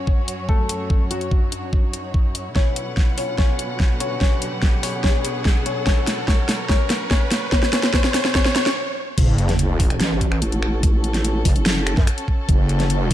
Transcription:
Already playing: string section F#2 F#3 C#4 F#4 C#5, grand piano C#4 C#5, riser
0.07 kick
0.28 closed hi-hat
0.49 grand piano A3 A4, kick
0.69 closed hi-hat
0.90 kick
1.11 grand piano F#3 F#4, closed hi-hat
1.21 closed hi-hat
1.31 kick
1.52 closed hi-hat
1.73 kick
1.93 closed hi-hat
2.14 kick
2.35 closed hi-hat
2.56 string section B2 D3 F#3 B4 F#5, grand piano C#4 C#5, kick, snare
2.76 closed hi-hat
2.97 kick, snare
3.18 grand piano C#4 C#5, open hi-hat
3.38 grand piano C#4 C#5, kick, snare
3.59 closed hi-hat
3.80 kick, snare
4.00 grand piano C#4 C#5, closed hi-hat
4.21 grand piano C#4 C#5, kick, snare
4.42 closed hi-hat
4.62 kick, snare
4.83 grand piano C#4 C#5, open hi-hat
5.04 grand piano C#4 C#5, kick, snare
5.25 closed hi-hat
5.45 kick, snare
5.66 grand piano C#4 C#5, closed hi-hat
5.87 grand piano C#4 C#5, kick, snare
6.07 snare, closed hi-hat
6.28 grand piano C#4 C#5, kick, snare
6.49 snare, open hi-hat
6.69 grand piano C#4 C#5, kick, snare
6.90 snare, closed hi-hat
7.11 grand piano C#4 C#5, kick, snare
7.31 snare, closed hi-hat
7.52 grand piano C#4 C#5, kick, snare
7.63 snare
7.73 grand piano C#4 C#5, snare, closed hi-hat
7.83 snare, closed hi-hat
7.93 grand piano C#4 C#5, kick, snare
8.04 snare
8.14 grand piano C#4 C#5, snare, open hi-hat
8.25 snare
8.35 grand piano C#4 C#5, kick, snare
8.45 snare
8.56 grand piano C#4 C#5, snare, closed hi-hat
8.66 snare
9.18 wobble bass F#1, string section C#4 F#4 A4, kick, closed hi-hat, crash, sub drop
9.38 closed hi-hat
9.49 snare, closed hi-hat
9.59 closed hi-hat
9.80 kick, open hi-hat
9.90 finger snap, closed hi-hat
10.00 wobble bass A1, snare, closed hi-hat
10.21 kick, closed hi-hat
10.32 finger snap
10.42 wobble bass A1, closed hi-hat
10.52 closed hi-hat
10.62 finger snap
10.83 wobble bass A1, kick, closed hi-hat
11.04 closed hi-hat
11.14 snare, closed hi-hat
11.25 closed hi-hat
11.45 wobble bass F#1, kick, open hi-hat
11.56 wobble bass F#1, closed hi-hat
11.66 snare, closed hi-hat
11.87 finger snap, closed hi-hat
11.97 wobble bass F#2, kick, snare
12.07 finger snap, closed hi-hat
12.18 closed hi-hat
12.28 kick
12.49 wobble bass F#1, kick, closed hi-hat
12.69 closed hi-hat
12.80 snare, closed hi-hat
12.90 closed hi-hat

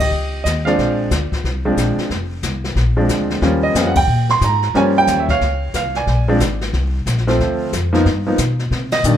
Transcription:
Already playing: upright bass C2
0.00 grand piano G4 D#5
0.11 upright bass C#2, brush sweep
0.44 upright bass D#2, grand piano D#5, kick, snare, hi-hat pedal
0.65 grand piano F3 G#3 C4 D4 D5 F5, snare
0.78 upright bass A#1, brush sweep, kick, snare
1.11 upright bass D2, kick, snare, hi-hat pedal
1.32 kick, snare
1.44 upright bass C2, brush sweep, kick, snare
1.65 grand piano F3 G#3 C4 D4
1.77 upright bass A#1, kick, snare, hi-hat pedal
1.98 muted upright bass stroke, snare
2.10 upright bass F1, brush sweep, kick, snare
2.43 upright bass C2, kick, snare, hi-hat pedal
2.64 snare
2.75 upright bass A#1, brush sweep, kick, snare
2.97 grand piano F3 G#3 C4 D4
3.08 upright bass D2, kick, snare, hi-hat pedal
3.30 snare
3.42 upright bass D#2, grand piano F3 G3 A#3 C#4, brush sweep, kick, snare
3.63 grand piano D#5
3.75 upright bass F2, grand piano F3 G3 A#3 C#4, kick, snare, hi-hat pedal
3.87 grand piano F#5
3.95 grand piano G5, kick, ride
4.07 upright bass A#2, brush sweep
4.29 grand piano C6, snare
4.41 upright bass G#2, grand piano A#5, kick, snare, hi-hat pedal
4.62 snare
4.74 upright bass G2, grand piano F3 G3 A#3 C#4 C#5 G#5, brush sweep, kick, snare
4.98 grand piano G5
5.07 upright bass D#2, kick, snare, hi-hat pedal
5.20 grand piano E5
5.29 grand piano C#5 F5, kick, snare
5.41 upright bass C#2, brush sweep, kick, snare
5.74 upright bass C2, grand piano F5, kick, snare, hi-hat pedal
5.95 grand piano D5 G#5, snare
6.07 upright bass A#1, brush sweep, kick, snare
6.28 grand piano F3 G#3 C4 D4
6.40 upright bass G#1, kick, snare, hi-hat pedal
6.61 snare
6.73 upright bass C2, brush sweep, kick, snare
7.06 upright bass A#1, kick, snare, hi-hat pedal
7.18 snare
7.27 grand piano F3 A3 C4 F4, snare
7.29 snare
7.39 upright bass D2, brush sweep, kick, snare
7.73 upright bass F2, kick, snare, hi-hat pedal
7.93 grand piano F3 A#3 B3 D#4, snare
8.05 upright bass G2, brush sweep, kick, snare
8.27 grand piano F3 A#3 B3 D#4
8.38 upright bass B2, kick, snare, hi-hat pedal
8.59 snare
8.71 upright bass C3, brush sweep, kick, snare
8.92 grand piano D#5, snare, ride
9.04 upright bass A#2, grand piano D#3 G3 A#3 D4, hi-hat pedal

